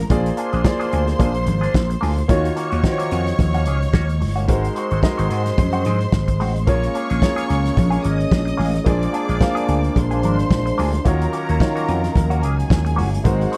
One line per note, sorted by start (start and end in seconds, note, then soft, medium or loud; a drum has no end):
0.00 0.10 A#3 medium
0.00 0.10 F4 medium
0.00 0.11 G#4 medium
0.00 0.11 C5 medium
0.00 0.12 C#5 medium
0.10 0.30 A#1 loud
0.10 0.27 A#3 medium
0.10 0.57 A#3 medium
0.10 0.28 D4 medium
0.10 0.57 F4 medium
0.10 0.57 G#4 medium
0.10 0.28 G#4 medium
0.10 2.25 C5 medium
0.10 0.57 C5 medium
0.10 0.57 D5 medium
0.10 2.25 C6 medium
0.10 kick loud
0.10 closed hi-hat medium
0.10 muted conga medium
0.26 closed hi-hat medium
0.37 0.51 A#3 medium
0.37 0.52 D4 medium
0.37 0.51 G#4 medium
0.37 closed hi-hat medium
0.53 0.62 A#1 medium
0.53 0.63 A#3 medium
0.53 0.64 D4 medium
0.53 0.64 G#4 medium
0.53 closed hi-hat soft
0.65 1.57 A#3 medium
0.65 1.57 F4 medium
0.65 1.57 G#4 medium
0.65 1.57 C5 medium
0.65 1.57 D5 loud
0.65 kick loud
0.65 snare loud
0.65 high conga medium
0.80 0.90 A#3 medium
0.80 0.91 D4 medium
0.80 0.92 G#4 medium
0.80 closed hi-hat medium
0.91 1.12 D2 medium
0.91 1.06 A#3 medium
0.91 1.06 D4 medium
0.91 1.07 G#4 medium
0.91 closed hi-hat medium
1.08 snare soft
1.08 closed hi-hat soft
1.19 1.48 A#1 loud
1.19 1.37 A#3 loud
1.19 1.34 D4 loud
1.19 1.33 G#4 loud
1.19 kick loud
1.19 closed hi-hat medium
1.19 muted conga medium
1.19 low conga medium
1.34 muted clean electric guitar stroke medium
1.34 closed hi-hat soft
1.47 1.66 G#1 medium
1.47 muted clean electric guitar stroke medium
1.47 closed hi-hat medium
1.47 muted conga soft
1.47 low conga medium
1.61 1.74 A#3 medium
1.61 1.73 D4 medium
1.61 1.73 G#4 medium
1.61 closed hi-hat soft
1.74 1.94 A#1 loud
1.74 kick loud
1.74 snare loud
1.74 high conga medium
1.90 muted clean electric guitar stroke soft
1.90 closed hi-hat medium
2.01 2.22 D2 medium
2.01 2.19 A#3 medium
2.01 2.17 D4 medium
2.01 2.16 G#4 medium
2.01 open hi-hat medium
2.01 high conga medium
2.17 muted clean electric guitar stroke medium
2.17 closed hi-hat soft
2.17 high conga soft
2.28 2.49 D#2 medium
2.28 2.76 D#3 medium
2.28 2.46 A#3 medium
2.28 2.47 C#4 medium
2.28 2.76 D#4 medium
2.28 2.76 F4 medium
2.28 2.76 F#4 medium
2.28 2.47 F#4 medium
2.28 4.44 C#5 medium
2.28 2.76 C#5 medium
2.28 4.44 C#6 loud
2.28 kick loud
2.28 closed hi-hat medium
2.28 muted conga medium
2.45 closed hi-hat soft
2.56 2.70 A#3 medium
2.56 2.70 C#4 medium
2.56 2.69 F#4 medium
2.56 closed hi-hat medium
2.70 2.81 D#2 loud
2.70 2.82 A#3 medium
2.70 2.83 C#4 medium
2.70 2.82 F#4 medium
2.70 closed hi-hat soft
2.83 3.76 D#3 medium
2.83 3.76 D#4 medium
2.83 3.76 F4 medium
2.83 3.76 F#4 medium
2.83 2.92 C5 medium
2.83 muted clean electric guitar stroke soft
2.83 kick loud
2.83 snare loud
2.83 high conga medium
2.92 3.80 C#5 medium
2.98 3.10 A#3 medium
2.98 3.11 C#4 medium
2.98 3.11 F#4 medium
2.98 closed hi-hat medium
3.11 3.31 F2 medium
3.11 3.25 A#3 medium
3.11 3.26 C#4 medium
3.11 3.26 F#4 medium
3.11 closed hi-hat medium
3.27 muted clean electric guitar stroke medium
3.27 snare soft
3.27 closed hi-hat soft
3.39 3.66 D#2 loud
3.39 muted clean electric guitar stroke soft
3.39 kick loud
3.39 closed hi-hat medium
3.39 muted conga medium
3.39 low conga loud
3.54 3.65 A#3 medium
3.54 3.66 C#4 medium
3.54 3.67 F#4 loud
3.54 closed hi-hat soft
3.66 3.86 C#2 loud
3.66 3.80 A#3 medium
3.66 3.81 C#4 medium
3.66 3.81 G#4 medium
3.66 closed hi-hat medium
3.66 muted conga soft
3.82 closed hi-hat soft
3.93 4.23 D#2 medium
3.93 4.11 A#3 medium
3.93 4.09 C#4 medium
3.93 4.08 F#4 medium
3.93 kick loud
3.93 snare loud
3.93 high conga medium
4.09 muted clean electric guitar stroke soft
4.09 closed hi-hat soft
4.20 4.49 G1 medium
4.20 muted clean electric guitar stroke soft
4.20 open hi-hat medium
4.20 high conga medium
4.36 4.48 A#3 medium
4.36 4.48 C#4 medium
4.36 4.47 F#4 medium
4.36 closed hi-hat soft
4.36 high conga soft
4.48 4.68 G#1 loud
4.48 4.95 G#3 medium
4.48 4.66 G#3 medium
4.48 4.66 C4 medium
4.48 4.95 D#4 medium
4.48 4.95 F#4 medium
4.48 4.67 F#4 medium
4.48 4.95 A#4 medium
4.48 6.64 C5 medium
4.48 4.95 C5 medium
4.48 6.64 C6 loud
4.48 kick loud
4.48 closed hi-hat medium
4.48 muted conga medium
4.65 closed hi-hat soft
4.75 4.89 G#3 medium
4.75 4.90 C4 medium
4.75 4.90 F#4 medium
4.75 closed hi-hat medium
4.91 5.00 G#1 medium
4.91 5.02 G#3 medium
4.91 5.03 C4 medium
4.91 5.02 F#4 medium
4.91 closed hi-hat soft
5.02 5.94 G#3 medium
5.02 5.94 D#4 medium
5.02 5.95 F#4 medium
5.02 5.95 A#4 medium
5.02 5.95 D#5 medium
5.02 muted clean electric guitar stroke medium
5.02 kick loud
5.02 snare loud
5.02 high conga medium
5.18 5.27 G#1 loud
5.18 5.29 G#3 medium
5.18 5.30 C4 medium
5.18 5.31 F#4 medium
5.18 closed hi-hat medium
5.30 5.50 G#2 medium
5.30 5.44 G#3 medium
5.30 5.45 C4 medium
5.30 5.44 F#4 medium
5.30 closed hi-hat medium
5.45 muted clean electric guitar stroke soft
5.45 snare soft
5.45 closed hi-hat soft
5.58 5.86 F#2 medium
5.58 muted clean electric guitar stroke soft
5.58 kick loud
5.58 closed hi-hat medium
5.58 muted conga medium
5.58 low conga medium
5.72 5.84 G#3 medium
5.72 5.85 C4 medium
5.72 5.87 F#4 loud
5.72 closed hi-hat soft
5.85 6.05 G#2 medium
5.85 5.99 G#3 medium
5.85 6.00 C4 medium
5.85 6.00 G#4 medium
5.85 closed hi-hat medium
5.85 muted conga soft
5.85 low conga medium
6.00 muted clean electric guitar stroke soft
6.00 closed hi-hat soft
6.12 6.40 G#1 medium
6.12 kick loud
6.12 snare loud
6.12 high conga medium
6.28 muted clean electric guitar stroke medium
6.28 kick medium
6.28 closed hi-hat medium
6.40 6.68 A1 medium
6.40 6.57 G#3 medium
6.40 6.56 C4 medium
6.40 6.54 F#4 loud
6.40 open hi-hat medium
6.40 high conga medium
6.55 muted clean electric guitar stroke soft
6.55 closed hi-hat soft
6.55 high conga soft
6.67 6.87 A#1 medium
6.67 11.02 G#3 medium
6.67 6.84 A#3 medium
6.67 7.14 A#3 medium
6.67 13.21 A#3 medium
6.67 8.84 C#4 medium
6.67 6.85 C#4 medium
6.67 7.14 F4 medium
6.67 7.14 G#4 medium
6.67 6.86 G#4 medium
6.67 7.14 A#4 medium
6.67 8.02 C#5 medium
6.67 7.14 C#5 medium
6.67 8.02 C#6 loud
6.67 kick loud
6.67 closed hi-hat medium
6.67 muted conga medium
6.83 closed hi-hat soft
6.95 7.09 A#3 medium
6.95 7.09 C#4 medium
6.95 7.09 G#4 medium
6.95 closed hi-hat medium
7.10 7.19 A#1 loud
7.10 7.21 A#3 soft
7.10 7.22 C#4 medium
7.10 7.21 G#4 medium
7.10 closed hi-hat soft
7.22 8.14 A#3 medium
7.22 8.14 F4 medium
7.22 8.14 G#4 medium
7.22 8.14 A#4 medium
7.22 8.14 C#5 medium
7.22 muted clean electric guitar stroke soft
7.22 kick loud
7.22 snare loud
7.22 high conga medium
7.36 7.47 A#3 medium
7.36 7.48 C#4 medium
7.36 7.49 G#4 medium
7.36 closed hi-hat medium
7.48 7.69 C#2 medium
7.48 7.63 A#3 medium
7.48 7.63 C#4 medium
7.48 7.63 G#4 medium
7.48 closed hi-hat medium
7.64 muted clean electric guitar stroke soft
7.64 snare soft
7.64 closed hi-hat soft
7.76 7.97 A#1 medium
7.76 muted clean electric guitar stroke soft
7.76 kick loud
7.76 closed hi-hat medium
7.76 muted conga medium
7.76 low conga medium
7.90 8.02 A#3 medium
7.90 8.03 C#4 medium
7.90 8.05 G#4 medium
7.90 closed hi-hat soft
8.03 8.24 G#1 medium
8.03 8.18 A#3 medium
8.03 8.18 C#4 medium
8.03 8.18 A#4 medium
8.03 8.85 D#5 medium
8.03 8.85 D#6 loud
8.03 closed hi-hat medium
8.03 muted conga soft
8.18 muted clean electric guitar stroke soft
8.18 closed hi-hat soft
8.31 8.51 A#1 medium
8.31 kick loud
8.31 snare loud
8.31 high conga loud
8.45 muted clean electric guitar stroke medium
8.45 closed hi-hat medium
8.57 8.78 A1 loud
8.57 8.76 A#3 medium
8.57 8.73 C#4 medium
8.57 8.72 G#4 medium
8.57 open hi-hat medium
8.57 high conga medium
8.73 muted clean electric guitar stroke medium
8.73 closed hi-hat soft
8.73 high conga soft
8.84 9.06 A#1 loud
8.84 9.03 A#3 medium
8.84 9.32 A#3 medium
8.84 9.03 D4 medium
8.84 11.04 D4 medium
8.84 9.33 F4 medium
8.84 9.33 G#4 medium
8.84 9.04 G#4 loud
8.84 9.33 C5 medium
8.84 9.33 D5 medium
8.84 9.94 D5 medium
8.84 9.94 D6 medium
8.84 kick loud
8.84 closed hi-hat medium
8.84 muted conga medium
9.03 closed hi-hat medium
9.13 9.27 A#3 medium
9.13 9.28 D4 medium
9.13 9.27 G#4 medium
9.13 closed hi-hat medium
9.28 9.38 A#1 medium
9.28 9.39 A#3 medium
9.28 9.39 D4 medium
9.28 9.39 G#4 medium
9.28 closed hi-hat soft
9.41 10.33 A#3 medium
9.41 10.33 F4 medium
9.41 10.33 G#4 medium
9.41 10.33 C5 medium
9.41 10.33 F5 medium
9.41 kick loud
9.41 snare loud
9.41 high conga medium
9.55 9.66 A#3 medium
9.55 9.67 D4 medium
9.55 9.68 G#4 medium
9.55 closed hi-hat medium
9.67 9.88 D2 medium
9.67 9.82 A#3 medium
9.67 9.82 D4 medium
9.67 9.82 G#4 medium
9.67 closed hi-hat medium
9.83 muted clean electric guitar stroke soft
9.83 closed hi-hat soft
9.95 10.23 A#1 medium
9.95 11.04 C5 medium
9.95 11.04 C6 loud
9.95 muted clean electric guitar stroke soft
9.95 kick loud
9.95 closed hi-hat medium
9.95 muted conga medium
9.95 low conga medium
10.11 10.22 A#3 medium
10.11 10.23 D4 medium
10.11 10.24 G#4 medium
10.11 closed hi-hat soft
10.23 10.42 G#1 loud
10.23 10.37 A#3 medium
10.23 10.38 D4 medium
10.23 10.38 A#4 medium
10.23 closed hi-hat medium
10.23 muted conga soft
10.23 low conga medium
10.39 closed hi-hat soft
10.51 10.70 A#1 medium
10.51 kick loud
10.51 snare loud
10.51 high conga medium
10.66 muted clean electric guitar stroke medium
10.66 closed hi-hat medium
10.78 10.98 D2 loud
10.78 10.95 A#3 medium
10.78 10.94 D4 medium
10.78 10.93 G#4 loud
10.78 open hi-hat medium
10.78 high conga medium
10.93 muted clean electric guitar stroke soft
10.93 closed hi-hat soft
10.93 high conga soft
11.05 11.25 D#2 loud
11.05 11.52 D#3 medium
11.05 13.23 D#3 medium
11.05 13.57 F#3 medium
11.05 11.22 A#3 medium
11.05 13.22 C#4 medium
11.05 11.23 C#4 medium
11.05 11.52 D#4 medium
11.05 11.52 F4 medium
11.05 11.52 F#4 medium
11.05 11.23 F#4 medium
11.05 12.40 A#4 medium
11.05 11.53 C#5 medium
11.05 13.22 F5 medium
11.05 12.40 A#5 loud
11.05 kick loud
11.05 closed hi-hat medium
11.05 muted conga medium
11.22 closed hi-hat medium
11.33 11.47 A#3 medium
11.33 11.47 C#4 medium
11.33 11.48 F#4 medium
11.33 closed hi-hat medium
11.49 11.57 D#2 loud
11.49 11.60 A#3 medium
11.49 11.60 C#4 medium
11.49 11.60 F#4 medium
11.49 closed hi-hat soft
11.60 12.52 D#3 medium
11.60 12.52 D#4 medium
11.60 12.52 F4 medium
11.60 12.53 F#4 medium
11.60 12.53 C#5 medium
11.60 muted clean electric guitar stroke soft
11.60 kick loud
11.60 snare loud
11.60 high conga medium
11.76 11.87 A#3 medium
11.76 11.88 C#4 medium
11.76 11.89 F#4 medium
11.76 closed hi-hat medium
11.88 12.08 F2 medium
11.88 12.02 A#3 medium
11.88 12.02 C#4 medium
11.88 12.02 F#4 medium
11.88 closed hi-hat medium
12.03 muted clean electric guitar stroke soft
12.03 snare soft
12.03 closed hi-hat soft
12.15 12.43 D#2 medium
12.15 muted clean electric guitar stroke soft
12.15 kick loud
12.15 closed hi-hat medium
12.15 muted conga medium
12.15 low conga medium
12.30 12.41 A#3 medium
12.30 12.42 C#4 loud
12.30 12.44 F#4 loud
12.30 closed hi-hat soft
12.42 12.62 C#2 loud
12.42 12.56 A#3 medium
12.42 12.57 C#4 medium
12.42 13.23 G#4 medium
12.42 12.57 G#4 medium
12.42 13.24 G#5 medium
12.42 closed hi-hat medium
12.57 muted clean electric guitar stroke soft
12.57 closed hi-hat soft
12.70 13.00 D#2 medium
12.70 kick loud
12.70 snare loud
12.70 high conga medium
12.85 muted clean electric guitar stroke medium
12.85 closed hi-hat medium
12.96 13.17 G1 loud
12.96 13.14 A#3 medium
12.96 13.12 C#4 medium
12.96 13.11 F#4 medium
12.96 open hi-hat medium
12.96 high conga medium
13.12 muted clean electric guitar stroke medium
13.12 closed hi-hat soft
13.12 high conga soft
13.24 13.45 G#1 loud
13.24 13.42 G#3 medium
13.24 13.57 G#3 medium
13.24 13.42 C4 medium
13.24 13.57 C4 medium
13.24 13.57 D#4 medium
13.24 13.57 F#4 medium
13.24 13.43 F#4 medium
13.24 13.57 A#4 medium
13.24 13.57 C5 loud
13.24 13.57 F#5 loud
13.24 kick loud
13.24 closed hi-hat medium
13.24 muted conga medium
13.41 closed hi-hat soft
13.52 13.57 G#3 medium
13.52 13.57 C4 medium
13.52 13.57 F#4 medium
13.52 closed hi-hat medium